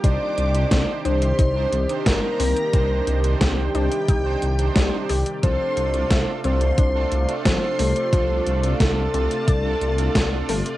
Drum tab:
HH |x-xxx-xxx-xxx-ox|x-xxx-xxx-xxx-ox|x-xxx-xxx-xxx-ox|x-xxx-xxx-xxx-ox|
SD |----o-------o---|----o-------o---|----o-------o---|----o-------o---|
BD |o---o---o---o---|o---o---o---o---|o---o---o---o---|o---o---o---o---|